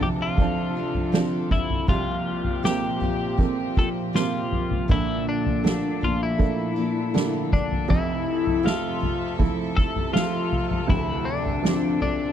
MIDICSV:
0, 0, Header, 1, 6, 480
1, 0, Start_track
1, 0, Key_signature, -1, "minor"
1, 0, Tempo, 750000
1, 1210, Time_signature, 4, 2, 24, 8
1, 7887, End_track
2, 0, Start_track
2, 0, Title_t, "Clean electric guitar"
2, 0, Program_c, 0, 27
2, 17, Note_on_c, 0, 67, 75
2, 49, Note_off_c, 0, 67, 0
2, 142, Note_on_c, 0, 65, 84
2, 971, Note_off_c, 0, 65, 0
2, 974, Note_on_c, 0, 64, 67
2, 1207, Note_off_c, 0, 64, 0
2, 1210, Note_on_c, 0, 65, 91
2, 1694, Note_off_c, 0, 65, 0
2, 1696, Note_on_c, 0, 67, 69
2, 2148, Note_off_c, 0, 67, 0
2, 2423, Note_on_c, 0, 69, 81
2, 2486, Note_off_c, 0, 69, 0
2, 2661, Note_on_c, 0, 65, 83
2, 3143, Note_off_c, 0, 65, 0
2, 3146, Note_on_c, 0, 64, 98
2, 3361, Note_off_c, 0, 64, 0
2, 3384, Note_on_c, 0, 62, 81
2, 3868, Note_on_c, 0, 65, 75
2, 3871, Note_off_c, 0, 62, 0
2, 3971, Note_off_c, 0, 65, 0
2, 3987, Note_on_c, 0, 64, 69
2, 4818, Note_off_c, 0, 64, 0
2, 4820, Note_on_c, 0, 62, 71
2, 5054, Note_off_c, 0, 62, 0
2, 5057, Note_on_c, 0, 64, 94
2, 5541, Note_on_c, 0, 65, 66
2, 5548, Note_off_c, 0, 64, 0
2, 5990, Note_off_c, 0, 65, 0
2, 6250, Note_on_c, 0, 69, 91
2, 6484, Note_off_c, 0, 69, 0
2, 6487, Note_on_c, 0, 65, 88
2, 6973, Note_off_c, 0, 65, 0
2, 6976, Note_on_c, 0, 64, 101
2, 7202, Note_on_c, 0, 62, 85
2, 7220, Note_off_c, 0, 64, 0
2, 7686, Note_off_c, 0, 62, 0
2, 7693, Note_on_c, 0, 62, 78
2, 7887, Note_off_c, 0, 62, 0
2, 7887, End_track
3, 0, Start_track
3, 0, Title_t, "String section"
3, 0, Program_c, 1, 48
3, 0, Note_on_c, 1, 48, 79
3, 0, Note_on_c, 1, 53, 69
3, 0, Note_on_c, 1, 62, 71
3, 0, Note_on_c, 1, 69, 88
3, 1182, Note_off_c, 1, 69, 0
3, 1194, Note_off_c, 1, 48, 0
3, 1194, Note_off_c, 1, 62, 0
3, 1205, Note_on_c, 1, 67, 82
3, 1206, Note_on_c, 1, 46, 70
3, 1207, Note_on_c, 1, 60, 68
3, 3108, Note_off_c, 1, 46, 0
3, 3108, Note_off_c, 1, 67, 0
3, 3109, Note_off_c, 1, 60, 0
3, 3131, Note_on_c, 1, 46, 74
3, 3133, Note_on_c, 1, 69, 78
3, 3134, Note_on_c, 1, 62, 72
3, 5031, Note_off_c, 1, 46, 0
3, 5033, Note_off_c, 1, 62, 0
3, 5056, Note_on_c, 1, 76, 68
3, 5060, Note_on_c, 1, 48, 77
3, 6942, Note_off_c, 1, 53, 0
3, 6954, Note_off_c, 1, 76, 0
3, 6970, Note_on_c, 1, 53, 73
3, 6971, Note_on_c, 1, 62, 68
3, 7887, Note_off_c, 1, 48, 0
3, 7887, Note_off_c, 1, 53, 0
3, 7887, Note_off_c, 1, 62, 0
3, 7887, Note_off_c, 1, 69, 0
3, 7887, End_track
4, 0, Start_track
4, 0, Title_t, "Steel-string acoustic guitar"
4, 0, Program_c, 2, 25
4, 1, Note_on_c, 2, 69, 48
4, 15, Note_on_c, 2, 62, 46
4, 21, Note_on_c, 2, 60, 38
4, 235, Note_off_c, 2, 60, 0
4, 235, Note_on_c, 2, 53, 50
4, 242, Note_on_c, 2, 60, 53
4, 243, Note_off_c, 2, 62, 0
4, 245, Note_off_c, 2, 69, 0
4, 251, Note_on_c, 2, 62, 59
4, 255, Note_on_c, 2, 69, 58
4, 473, Note_off_c, 2, 69, 0
4, 481, Note_on_c, 2, 69, 48
4, 482, Note_off_c, 2, 53, 0
4, 483, Note_off_c, 2, 62, 0
4, 486, Note_off_c, 2, 60, 0
4, 491, Note_on_c, 2, 62, 51
4, 503, Note_on_c, 2, 60, 39
4, 717, Note_on_c, 2, 50, 69
4, 719, Note_off_c, 2, 60, 0
4, 720, Note_off_c, 2, 62, 0
4, 722, Note_on_c, 2, 53, 74
4, 725, Note_off_c, 2, 69, 0
4, 727, Note_on_c, 2, 60, 79
4, 728, Note_on_c, 2, 62, 80
4, 732, Note_on_c, 2, 69, 78
4, 1197, Note_off_c, 2, 50, 0
4, 1199, Note_on_c, 2, 48, 65
4, 1201, Note_off_c, 2, 53, 0
4, 1204, Note_off_c, 2, 60, 0
4, 1204, Note_on_c, 2, 55, 71
4, 1207, Note_on_c, 2, 58, 75
4, 1208, Note_off_c, 2, 62, 0
4, 1210, Note_off_c, 2, 69, 0
4, 1210, Note_on_c, 2, 65, 76
4, 1212, Note_on_c, 2, 67, 74
4, 1674, Note_off_c, 2, 48, 0
4, 1680, Note_off_c, 2, 55, 0
4, 1682, Note_on_c, 2, 48, 66
4, 1687, Note_off_c, 2, 58, 0
4, 1688, Note_on_c, 2, 55, 66
4, 1690, Note_on_c, 2, 58, 71
4, 1691, Note_off_c, 2, 67, 0
4, 1692, Note_off_c, 2, 65, 0
4, 1695, Note_on_c, 2, 65, 70
4, 1697, Note_on_c, 2, 67, 67
4, 1913, Note_off_c, 2, 67, 0
4, 1921, Note_on_c, 2, 67, 46
4, 1922, Note_off_c, 2, 65, 0
4, 1926, Note_off_c, 2, 48, 0
4, 1929, Note_off_c, 2, 55, 0
4, 1930, Note_off_c, 2, 58, 0
4, 1930, Note_on_c, 2, 65, 44
4, 1941, Note_on_c, 2, 58, 42
4, 2160, Note_off_c, 2, 58, 0
4, 2160, Note_on_c, 2, 55, 52
4, 2165, Note_off_c, 2, 67, 0
4, 2168, Note_off_c, 2, 65, 0
4, 2168, Note_on_c, 2, 58, 54
4, 2176, Note_on_c, 2, 65, 59
4, 2184, Note_on_c, 2, 67, 53
4, 2393, Note_off_c, 2, 67, 0
4, 2401, Note_on_c, 2, 67, 46
4, 2403, Note_off_c, 2, 65, 0
4, 2405, Note_off_c, 2, 55, 0
4, 2409, Note_off_c, 2, 58, 0
4, 2411, Note_on_c, 2, 65, 40
4, 2423, Note_on_c, 2, 58, 37
4, 2643, Note_on_c, 2, 48, 65
4, 2644, Note_off_c, 2, 58, 0
4, 2645, Note_off_c, 2, 67, 0
4, 2649, Note_on_c, 2, 55, 67
4, 2650, Note_off_c, 2, 65, 0
4, 2651, Note_on_c, 2, 58, 69
4, 2658, Note_on_c, 2, 65, 64
4, 2658, Note_on_c, 2, 67, 67
4, 3122, Note_on_c, 2, 46, 61
4, 3124, Note_off_c, 2, 48, 0
4, 3126, Note_on_c, 2, 50, 65
4, 3127, Note_off_c, 2, 55, 0
4, 3129, Note_off_c, 2, 58, 0
4, 3129, Note_on_c, 2, 53, 68
4, 3132, Note_on_c, 2, 58, 68
4, 3133, Note_off_c, 2, 65, 0
4, 3134, Note_off_c, 2, 67, 0
4, 3135, Note_on_c, 2, 62, 79
4, 3140, Note_on_c, 2, 69, 72
4, 3599, Note_off_c, 2, 46, 0
4, 3601, Note_off_c, 2, 50, 0
4, 3606, Note_on_c, 2, 46, 57
4, 3608, Note_off_c, 2, 58, 0
4, 3609, Note_on_c, 2, 50, 60
4, 3610, Note_off_c, 2, 53, 0
4, 3611, Note_off_c, 2, 62, 0
4, 3612, Note_on_c, 2, 53, 61
4, 3616, Note_on_c, 2, 58, 65
4, 3618, Note_off_c, 2, 69, 0
4, 3619, Note_on_c, 2, 62, 64
4, 3621, Note_on_c, 2, 69, 65
4, 3839, Note_off_c, 2, 69, 0
4, 3847, Note_on_c, 2, 69, 48
4, 3848, Note_off_c, 2, 46, 0
4, 3848, Note_off_c, 2, 62, 0
4, 3849, Note_off_c, 2, 50, 0
4, 3851, Note_off_c, 2, 53, 0
4, 3853, Note_off_c, 2, 58, 0
4, 3855, Note_on_c, 2, 62, 39
4, 3861, Note_on_c, 2, 58, 39
4, 3868, Note_on_c, 2, 53, 42
4, 4077, Note_off_c, 2, 53, 0
4, 4084, Note_off_c, 2, 58, 0
4, 4085, Note_on_c, 2, 53, 53
4, 4088, Note_off_c, 2, 69, 0
4, 4089, Note_off_c, 2, 62, 0
4, 4092, Note_on_c, 2, 58, 53
4, 4097, Note_on_c, 2, 62, 54
4, 4105, Note_on_c, 2, 69, 61
4, 4319, Note_off_c, 2, 69, 0
4, 4327, Note_off_c, 2, 53, 0
4, 4327, Note_off_c, 2, 62, 0
4, 4327, Note_on_c, 2, 69, 51
4, 4331, Note_off_c, 2, 58, 0
4, 4335, Note_on_c, 2, 62, 48
4, 4343, Note_on_c, 2, 58, 49
4, 4349, Note_on_c, 2, 53, 34
4, 4568, Note_off_c, 2, 53, 0
4, 4568, Note_off_c, 2, 58, 0
4, 4568, Note_off_c, 2, 69, 0
4, 4569, Note_on_c, 2, 46, 81
4, 4571, Note_on_c, 2, 50, 79
4, 4572, Note_off_c, 2, 62, 0
4, 4576, Note_on_c, 2, 53, 84
4, 4576, Note_on_c, 2, 58, 78
4, 4580, Note_on_c, 2, 62, 83
4, 4580, Note_on_c, 2, 69, 85
4, 5040, Note_off_c, 2, 53, 0
4, 5043, Note_on_c, 2, 53, 63
4, 5044, Note_off_c, 2, 58, 0
4, 5047, Note_on_c, 2, 60, 71
4, 5049, Note_off_c, 2, 46, 0
4, 5050, Note_off_c, 2, 50, 0
4, 5051, Note_off_c, 2, 62, 0
4, 5054, Note_on_c, 2, 64, 84
4, 5056, Note_off_c, 2, 69, 0
4, 5059, Note_on_c, 2, 69, 73
4, 5522, Note_off_c, 2, 53, 0
4, 5524, Note_on_c, 2, 53, 67
4, 5529, Note_off_c, 2, 60, 0
4, 5531, Note_on_c, 2, 60, 66
4, 5532, Note_off_c, 2, 64, 0
4, 5538, Note_off_c, 2, 69, 0
4, 5541, Note_on_c, 2, 69, 62
4, 5756, Note_off_c, 2, 69, 0
4, 5764, Note_on_c, 2, 69, 46
4, 5767, Note_off_c, 2, 53, 0
4, 5771, Note_off_c, 2, 60, 0
4, 5785, Note_on_c, 2, 60, 33
4, 6004, Note_on_c, 2, 53, 53
4, 6006, Note_off_c, 2, 60, 0
4, 6007, Note_off_c, 2, 69, 0
4, 6014, Note_on_c, 2, 60, 54
4, 6020, Note_on_c, 2, 64, 55
4, 6027, Note_on_c, 2, 69, 62
4, 6238, Note_off_c, 2, 69, 0
4, 6247, Note_off_c, 2, 53, 0
4, 6247, Note_off_c, 2, 64, 0
4, 6252, Note_off_c, 2, 60, 0
4, 6255, Note_on_c, 2, 64, 45
4, 6267, Note_on_c, 2, 60, 44
4, 6487, Note_off_c, 2, 60, 0
4, 6491, Note_on_c, 2, 53, 66
4, 6492, Note_off_c, 2, 64, 0
4, 6494, Note_on_c, 2, 60, 64
4, 6506, Note_on_c, 2, 69, 77
4, 6973, Note_on_c, 2, 50, 65
4, 6977, Note_off_c, 2, 53, 0
4, 6979, Note_off_c, 2, 60, 0
4, 6980, Note_on_c, 2, 53, 64
4, 6982, Note_on_c, 2, 60, 70
4, 6984, Note_on_c, 2, 62, 80
4, 6985, Note_off_c, 2, 69, 0
4, 6987, Note_on_c, 2, 69, 74
4, 7444, Note_off_c, 2, 50, 0
4, 7452, Note_on_c, 2, 50, 60
4, 7454, Note_off_c, 2, 53, 0
4, 7456, Note_off_c, 2, 60, 0
4, 7456, Note_on_c, 2, 53, 75
4, 7457, Note_off_c, 2, 62, 0
4, 7458, Note_on_c, 2, 60, 71
4, 7459, Note_off_c, 2, 69, 0
4, 7464, Note_on_c, 2, 62, 66
4, 7465, Note_on_c, 2, 69, 72
4, 7684, Note_off_c, 2, 69, 0
4, 7691, Note_off_c, 2, 50, 0
4, 7691, Note_on_c, 2, 69, 47
4, 7693, Note_off_c, 2, 53, 0
4, 7694, Note_off_c, 2, 60, 0
4, 7695, Note_off_c, 2, 62, 0
4, 7702, Note_on_c, 2, 62, 43
4, 7711, Note_on_c, 2, 60, 40
4, 7887, Note_off_c, 2, 60, 0
4, 7887, Note_off_c, 2, 62, 0
4, 7887, Note_off_c, 2, 69, 0
4, 7887, End_track
5, 0, Start_track
5, 0, Title_t, "Upright piano"
5, 0, Program_c, 3, 0
5, 0, Control_c, 3, 64, 127
5, 0, Note_on_c, 3, 26, 57
5, 0, Note_on_c, 3, 38, 59
5, 0, Note_on_c, 3, 53, 44
5, 0, Note_on_c, 3, 60, 36
5, 0, Note_on_c, 3, 62, 43
5, 236, Note_off_c, 3, 53, 0
5, 237, Note_off_c, 3, 60, 0
5, 239, Note_off_c, 3, 62, 0
5, 246, Note_on_c, 3, 53, 48
5, 248, Note_on_c, 3, 60, 45
5, 250, Note_on_c, 3, 62, 49
5, 713, Note_off_c, 3, 53, 0
5, 715, Note_off_c, 3, 60, 0
5, 716, Note_off_c, 3, 62, 0
5, 727, Note_on_c, 3, 53, 50
5, 731, Note_on_c, 3, 60, 42
5, 735, Note_on_c, 3, 62, 50
5, 1184, Note_off_c, 3, 26, 0
5, 1184, Note_off_c, 3, 38, 0
5, 1194, Note_off_c, 3, 53, 0
5, 1196, Note_off_c, 3, 60, 0
5, 1198, Note_off_c, 3, 62, 0
5, 1205, Note_on_c, 3, 36, 58
5, 1219, Control_c, 3, 64, 0
5, 1326, Control_c, 3, 64, 127
5, 1690, Note_on_c, 3, 53, 40
5, 1691, Note_on_c, 3, 58, 39
5, 1693, Note_on_c, 3, 60, 47
5, 2156, Note_off_c, 3, 53, 0
5, 2156, Note_off_c, 3, 58, 0
5, 2157, Note_off_c, 3, 60, 0
5, 2165, Note_on_c, 3, 53, 41
5, 2170, Note_on_c, 3, 58, 44
5, 2173, Note_on_c, 3, 60, 53
5, 2633, Note_off_c, 3, 53, 0
5, 2635, Note_off_c, 3, 58, 0
5, 2637, Note_off_c, 3, 60, 0
5, 2655, Note_on_c, 3, 58, 40
5, 2656, Note_on_c, 3, 53, 47
5, 2658, Note_on_c, 3, 60, 46
5, 3102, Note_off_c, 3, 36, 0
5, 3118, Note_off_c, 3, 58, 0
5, 3119, Note_off_c, 3, 53, 0
5, 3119, Note_off_c, 3, 60, 0
5, 3132, Note_on_c, 3, 34, 52
5, 3136, Note_on_c, 3, 46, 59
5, 3138, Control_c, 3, 64, 0
5, 3248, Control_c, 3, 64, 127
5, 3606, Note_on_c, 3, 57, 42
5, 3611, Note_on_c, 3, 58, 33
5, 3613, Note_on_c, 3, 62, 44
5, 4074, Note_off_c, 3, 57, 0
5, 4076, Note_off_c, 3, 58, 0
5, 4077, Note_off_c, 3, 62, 0
5, 4085, Note_on_c, 3, 57, 46
5, 4088, Note_on_c, 3, 62, 52
5, 4089, Note_on_c, 3, 58, 41
5, 4553, Note_off_c, 3, 57, 0
5, 4554, Note_off_c, 3, 62, 0
5, 4555, Note_off_c, 3, 58, 0
5, 4568, Note_on_c, 3, 57, 45
5, 4573, Note_on_c, 3, 58, 45
5, 4574, Note_on_c, 3, 62, 51
5, 5025, Note_off_c, 3, 34, 0
5, 5027, Note_off_c, 3, 46, 0
5, 5035, Note_off_c, 3, 57, 0
5, 5037, Note_off_c, 3, 58, 0
5, 5038, Note_off_c, 3, 62, 0
5, 5046, Note_on_c, 3, 29, 58
5, 5047, Note_on_c, 3, 41, 67
5, 5057, Control_c, 3, 64, 0
5, 5161, Control_c, 3, 64, 127
5, 5530, Note_on_c, 3, 53, 43
5, 5532, Note_on_c, 3, 57, 38
5, 5533, Note_on_c, 3, 76, 46
5, 5996, Note_off_c, 3, 53, 0
5, 5996, Note_off_c, 3, 57, 0
5, 5997, Note_off_c, 3, 76, 0
5, 6007, Note_on_c, 3, 57, 41
5, 6008, Note_on_c, 3, 53, 47
5, 6012, Note_on_c, 3, 64, 51
5, 6474, Note_off_c, 3, 53, 0
5, 6474, Note_off_c, 3, 57, 0
5, 6476, Note_off_c, 3, 64, 0
5, 6484, Note_on_c, 3, 53, 46
5, 6488, Note_on_c, 3, 57, 42
5, 6489, Note_on_c, 3, 76, 51
5, 6943, Note_off_c, 3, 29, 0
5, 6943, Note_off_c, 3, 41, 0
5, 6952, Note_off_c, 3, 53, 0
5, 6954, Note_off_c, 3, 57, 0
5, 6955, Note_off_c, 3, 76, 0
5, 6961, Note_on_c, 3, 38, 60
5, 6963, Note_on_c, 3, 26, 57
5, 6977, Control_c, 3, 64, 0
5, 7081, Control_c, 3, 64, 127
5, 7443, Note_on_c, 3, 53, 43
5, 7443, Note_on_c, 3, 60, 38
5, 7445, Note_on_c, 3, 62, 44
5, 7887, Note_off_c, 3, 26, 0
5, 7887, Note_off_c, 3, 38, 0
5, 7887, Note_off_c, 3, 53, 0
5, 7887, Note_off_c, 3, 60, 0
5, 7887, Note_off_c, 3, 62, 0
5, 7887, End_track
6, 0, Start_track
6, 0, Title_t, "Drums"
6, 5, Note_on_c, 9, 43, 57
6, 69, Note_off_c, 9, 43, 0
6, 242, Note_on_c, 9, 36, 78
6, 243, Note_on_c, 9, 43, 55
6, 306, Note_off_c, 9, 36, 0
6, 307, Note_off_c, 9, 43, 0
6, 606, Note_on_c, 9, 43, 51
6, 670, Note_off_c, 9, 43, 0
6, 729, Note_on_c, 9, 38, 95
6, 793, Note_off_c, 9, 38, 0
6, 964, Note_on_c, 9, 43, 62
6, 967, Note_on_c, 9, 36, 76
6, 1028, Note_off_c, 9, 43, 0
6, 1031, Note_off_c, 9, 36, 0
6, 1089, Note_on_c, 9, 43, 58
6, 1153, Note_off_c, 9, 43, 0
6, 1205, Note_on_c, 9, 43, 96
6, 1206, Note_on_c, 9, 36, 97
6, 1269, Note_off_c, 9, 43, 0
6, 1270, Note_off_c, 9, 36, 0
6, 1563, Note_on_c, 9, 43, 55
6, 1627, Note_off_c, 9, 43, 0
6, 1694, Note_on_c, 9, 38, 97
6, 1758, Note_off_c, 9, 38, 0
6, 1929, Note_on_c, 9, 43, 54
6, 1993, Note_off_c, 9, 43, 0
6, 2167, Note_on_c, 9, 36, 78
6, 2231, Note_off_c, 9, 36, 0
6, 2414, Note_on_c, 9, 36, 83
6, 2478, Note_off_c, 9, 36, 0
6, 2658, Note_on_c, 9, 38, 95
6, 2722, Note_off_c, 9, 38, 0
6, 2895, Note_on_c, 9, 43, 55
6, 2959, Note_off_c, 9, 43, 0
6, 3014, Note_on_c, 9, 43, 61
6, 3078, Note_off_c, 9, 43, 0
6, 3133, Note_on_c, 9, 43, 88
6, 3134, Note_on_c, 9, 36, 98
6, 3197, Note_off_c, 9, 43, 0
6, 3198, Note_off_c, 9, 36, 0
6, 3494, Note_on_c, 9, 43, 55
6, 3558, Note_off_c, 9, 43, 0
6, 3621, Note_on_c, 9, 38, 96
6, 3685, Note_off_c, 9, 38, 0
6, 3857, Note_on_c, 9, 43, 56
6, 3921, Note_off_c, 9, 43, 0
6, 4094, Note_on_c, 9, 36, 79
6, 4158, Note_off_c, 9, 36, 0
6, 4585, Note_on_c, 9, 38, 92
6, 4649, Note_off_c, 9, 38, 0
6, 4817, Note_on_c, 9, 43, 56
6, 4818, Note_on_c, 9, 36, 78
6, 4881, Note_off_c, 9, 43, 0
6, 4882, Note_off_c, 9, 36, 0
6, 4941, Note_on_c, 9, 43, 61
6, 5005, Note_off_c, 9, 43, 0
6, 5059, Note_on_c, 9, 36, 100
6, 5061, Note_on_c, 9, 43, 93
6, 5123, Note_off_c, 9, 36, 0
6, 5125, Note_off_c, 9, 43, 0
6, 5420, Note_on_c, 9, 43, 56
6, 5484, Note_off_c, 9, 43, 0
6, 5547, Note_on_c, 9, 38, 93
6, 5611, Note_off_c, 9, 38, 0
6, 5778, Note_on_c, 9, 43, 56
6, 5842, Note_off_c, 9, 43, 0
6, 6014, Note_on_c, 9, 36, 74
6, 6015, Note_on_c, 9, 43, 52
6, 6078, Note_off_c, 9, 36, 0
6, 6079, Note_off_c, 9, 43, 0
6, 6257, Note_on_c, 9, 36, 76
6, 6321, Note_off_c, 9, 36, 0
6, 6375, Note_on_c, 9, 43, 54
6, 6439, Note_off_c, 9, 43, 0
6, 6499, Note_on_c, 9, 38, 100
6, 6563, Note_off_c, 9, 38, 0
6, 6734, Note_on_c, 9, 43, 58
6, 6798, Note_off_c, 9, 43, 0
6, 6853, Note_on_c, 9, 43, 57
6, 6917, Note_off_c, 9, 43, 0
6, 6973, Note_on_c, 9, 36, 98
6, 6973, Note_on_c, 9, 43, 98
6, 7037, Note_off_c, 9, 36, 0
6, 7037, Note_off_c, 9, 43, 0
6, 7333, Note_on_c, 9, 43, 54
6, 7397, Note_off_c, 9, 43, 0
6, 7456, Note_on_c, 9, 38, 94
6, 7520, Note_off_c, 9, 38, 0
6, 7689, Note_on_c, 9, 43, 52
6, 7753, Note_off_c, 9, 43, 0
6, 7887, End_track
0, 0, End_of_file